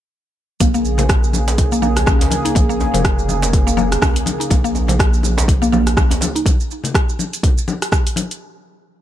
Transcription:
0.60 2.27 A#1 medium
0.60 6.42 C#3 medium
0.60 6.42 A#3 medium
0.60 0.68 A#3 loud
0.60 6.42 G#4 medium
0.60 kick loud
0.60 closed hi-hat medium
0.60 high conga loud
0.60 shaker medium
0.74 0.84 A#3 loud
0.74 djembe tone medium
0.74 shaker medium
0.85 shaker medium
0.98 1.05 F3 medium
0.98 closed hi-hat soft
0.98 low conga medium
0.98 shaker medium
1.09 kick loud
1.09 cross-stick loud
1.09 closed hi-hat medium
1.09 djembe tone medium
1.09 shaker soft
1.24 shaker soft
1.33 high conga medium
1.33 djembe tone medium
1.33 shaker medium
1.48 closed hi-hat soft
1.48 djembe slap medium
1.48 shaker medium
1.58 kick loud
1.58 closed hi-hat medium
1.58 djembe tone medium
1.58 low conga medium
1.58 shaker medium
1.72 1.81 A#3 medium
1.72 shaker medium
1.82 1.95 A#3 loud
1.82 high conga medium
1.82 shaker soft
1.96 cross-stick medium
1.96 closed hi-hat soft
1.96 djembe tone medium
1.96 shaker soft
2.06 2.19 C#4 medium
2.06 kick loud
2.06 cross-stick loud
2.06 high conga medium
2.06 shaker medium
2.21 closed hi-hat medium
2.21 djembe slap medium
2.21 djembe tone medium
2.21 djembe bass medium
2.21 shaker soft
2.31 closed hi-hat soft
2.31 high conga medium
2.31 shaker medium
2.45 2.55 D#4 medium
2.45 closed hi-hat soft
2.45 djembe tone medium
2.45 shaker soft
2.55 2.88 A#1 loud
2.55 2.63 A#3 medium
2.55 kick loud
2.55 closed hi-hat soft
2.55 high conga loud
2.55 shaker medium
2.69 2.79 A#3 loud
2.69 shaker medium
2.80 djembe tone medium
2.80 shaker medium
2.94 3.97 F1 medium
2.94 3.00 F3 medium
2.94 closed hi-hat soft
2.94 low conga medium
2.94 shaker medium
3.05 kick loud
3.05 cross-stick loud
3.05 closed hi-hat soft
3.05 djembe tone medium
3.05 shaker medium
3.19 shaker medium
3.29 high conga medium
3.29 djembe tone medium
3.29 shaker medium
3.42 closed hi-hat soft
3.42 djembe slap medium
3.42 shaker medium
3.53 kick loud
3.53 closed hi-hat medium
3.53 low conga medium
3.53 shaker medium
3.67 3.76 A#3 loud
3.67 djembe tone medium
3.67 shaker medium
3.77 3.90 A#3 loud
3.77 high conga loud
3.77 shaker soft
3.92 cross-stick medium
3.92 closed hi-hat soft
3.92 djembe tone medium
3.92 shaker medium
4.02 4.14 C#4 medium
4.02 kick loud
4.02 cross-stick loud
4.02 djembe bass medium
4.02 shaker medium
4.16 closed hi-hat medium
4.16 djembe tone medium
4.16 shaker medium
4.26 closed hi-hat soft
4.26 high conga loud
4.26 shaker medium
4.40 4.50 D#4 medium
4.40 closed hi-hat soft
4.40 shaker medium
4.50 6.17 A#1 medium
4.50 4.58 A#3 loud
4.50 kick loud
4.50 closed hi-hat soft
4.50 high conga loud
4.50 djembe tone medium
4.50 shaker medium
4.64 4.74 A#3 loud
4.64 shaker medium
4.75 djembe tone medium
4.75 shaker medium
4.88 4.95 F3 loud
4.88 closed hi-hat soft
4.88 low conga loud
4.88 shaker medium
4.99 kick loud
4.99 cross-stick loud
4.99 closed hi-hat soft
4.99 djembe tone medium
4.99 shaker medium
5.14 shaker medium
5.23 high conga medium
5.23 shaker loud
5.38 closed hi-hat soft
5.38 djembe slap medium
5.38 djembe tone medium
5.38 shaker medium
5.48 kick loud
5.48 closed hi-hat soft
5.48 low conga medium
5.48 shaker medium
5.62 5.71 A#3 loud
5.62 djembe tone medium
5.62 shaker medium
5.72 5.85 A#3 loud
5.72 high conga loud
5.72 shaker medium
5.87 cross-stick medium
5.87 closed hi-hat soft
5.87 djembe tone medium
5.87 shaker medium
5.97 6.10 C#4 medium
5.97 kick loud
5.97 cross-stick loud
5.97 high conga medium
5.97 shaker medium
6.11 closed hi-hat soft
6.11 djembe slap medium
6.11 djembe bass medium
6.11 shaker medium
6.21 closed hi-hat soft
6.21 djembe tone loud
6.21 high conga loud
6.21 shaker loud
6.35 6.45 D#4 medium
6.35 closed hi-hat soft
6.35 shaker soft
6.46 kick loud
6.46 closed hi-hat medium
6.46 high conga loud
6.46 shaker medium
6.60 shaker medium
6.71 shaker medium
6.84 closed hi-hat soft
6.84 low conga medium
6.84 shaker medium
6.95 kick loud
6.95 cross-stick loud
6.95 closed hi-hat medium
6.95 shaker medium
7.09 shaker medium
7.19 high conga medium
7.19 shaker medium
7.33 closed hi-hat soft
7.33 shaker medium
7.43 kick loud
7.43 closed hi-hat medium
7.43 high conga medium
7.43 low conga medium
7.43 shaker medium
7.58 shaker loud
7.68 high conga loud
7.68 shaker medium
7.82 cross-stick medium
7.82 closed hi-hat soft
7.82 shaker medium
7.92 kick loud
7.92 cross-stick loud
7.92 shaker medium
8.07 closed hi-hat medium
8.07 shaker medium
8.16 closed hi-hat medium
8.16 high conga medium
8.16 shaker loud
8.31 closed hi-hat soft
8.31 shaker medium

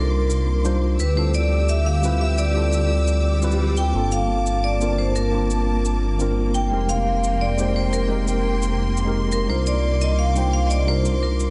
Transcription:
0.00 0.98 C2 medium
0.00 0.64 G3 medium
0.00 0.96 A#3 medium
0.00 0.64 D4 medium
0.00 0.65 D#4 medium
0.00 0.65 F4 medium
0.00 0.61 A#4 medium
0.00 1.01 A#4 medium
0.00 0.66 C5 medium
0.00 0.96 C6 medium
0.00 0.97 D6 medium
0.30 shaker medium
0.64 0.98 G3 medium
0.64 0.98 D4 medium
0.64 0.99 D#4 medium
0.64 0.99 F4 medium
0.64 0.99 C5 medium
0.64 shaker medium
1.00 3.93 D2 medium
1.00 3.92 G4 medium
1.00 1.18 B4 medium
1.00 6.68 D6 medium
1.00 3.92 E6 medium
1.00 shaker medium
1.15 2.01 G3 medium
1.15 2.01 C4 medium
1.15 2.02 E4 medium
1.15 2.02 F4 medium
1.15 2.03 A4 medium
1.15 1.25 C5 medium
1.34 1.70 D5 medium
1.34 shaker medium
1.69 1.85 E5 medium
1.69 shaker medium
1.86 2.19 F5 medium
2.02 2.53 G3 medium
2.02 2.53 C4 medium
2.02 2.54 E4 medium
2.02 2.54 F4 medium
2.02 2.55 B4 medium
2.02 shaker medium
2.21 2.39 E5 medium
2.38 3.56 D5 medium
2.38 shaker medium
2.54 3.40 G3 medium
2.54 3.40 C4 medium
2.54 3.40 E4 medium
2.54 3.41 F4 medium
2.54 3.41 A4 medium
2.73 shaker medium
3.08 shaker medium
3.25 swell medium
3.41 3.92 G3 medium
3.41 3.92 C4 medium
3.41 3.93 E4 medium
3.41 3.93 F4 medium
3.41 3.93 B4 medium
3.41 shaker medium
3.51 shaker soft
3.77 4.13 G5 loud
3.77 shaker medium
3.93 6.70 G1 medium
3.93 4.78 A#3 medium
3.93 11.50 A#3 medium
3.93 4.79 C4 medium
3.93 4.79 D4 medium
3.93 4.80 F4 medium
3.93 4.80 A4 medium
3.93 6.69 A5 medium
4.12 4.66 F5 loud
4.12 shaker medium
4.46 shaker medium
4.64 4.96 D5 medium
4.79 5.30 A#3 medium
4.79 5.31 C4 medium
4.79 5.31 D4 medium
4.79 5.32 F4 medium
4.79 5.32 A#4 medium
4.79 shaker medium
4.98 5.16 C5 medium
5.16 5.81 A#4 medium
5.16 shaker medium
5.31 6.17 A#3 medium
5.31 6.18 C4 medium
5.31 6.18 D4 medium
5.31 6.18 F4 medium
5.31 6.19 A5 medium
5.51 shaker medium
5.85 shaker medium
6.18 6.69 A#3 medium
6.18 6.70 C4 medium
6.18 6.70 D4 medium
6.18 6.70 F4 medium
6.18 6.71 A#4 medium
6.18 shaker soft
6.54 6.87 G5 loud
6.54 shaker medium
6.70 9.48 F1 medium
6.70 7.56 G#3 medium
6.70 7.56 C4 medium
6.70 7.57 D#4 medium
6.70 7.57 G4 medium
6.70 7.58 A#4 medium
6.70 9.47 G5 medium
6.70 11.50 C6 medium
6.89 7.43 F5 medium
6.89 shaker medium
7.24 shaker medium
7.41 7.77 D5 medium
7.57 8.08 G#3 medium
7.57 8.08 C4 medium
7.57 8.09 D#4 medium
7.57 8.09 G4 medium
7.57 8.10 C5 medium
7.57 shaker soft
7.76 7.84 C5 medium
7.93 8.59 A#4 medium
7.93 shaker medium
8.09 8.95 G#3 medium
8.09 8.95 C4 medium
8.09 8.95 D#4 medium
8.09 8.96 G4 medium
8.09 8.96 A#4 medium
8.28 shaker medium
8.63 shaker medium
8.97 shaker medium
9.05 9.47 G#3 medium
9.05 9.47 C4 medium
9.05 9.47 D#4 medium
9.05 9.48 G4 medium
9.05 9.48 A#4 medium
9.32 9.50 A#4 medium
9.32 shaker medium
9.48 11.50 C2 medium
9.48 10.33 G3 medium
9.48 10.34 D4 medium
9.48 10.34 D#4 medium
9.48 10.35 F4 medium
9.48 10.35 A#4 medium
9.48 9.67 C5 medium
9.48 11.50 D6 medium
9.67 9.99 D5 medium
9.67 shaker medium
10.01 10.19 D#5 medium
10.01 shaker medium
10.19 10.37 F5 medium
10.34 10.85 G3 medium
10.34 10.86 D4 medium
10.34 10.86 D#4 medium
10.34 10.87 F4 medium
10.34 10.87 C5 medium
10.34 10.54 G5 medium
10.34 shaker medium
10.53 10.67 F5 medium
10.67 10.89 D5 medium
10.67 10.71 D#5 medium
10.67 shaker medium
10.86 11.50 G3 medium
10.86 11.50 D4 medium
10.86 11.50 D#4 medium
10.86 11.50 F4 medium
10.86 11.50 A#4 medium
10.86 11.24 C5 medium
11.05 shaker medium
11.23 11.50 A#4 medium
11.40 shaker medium

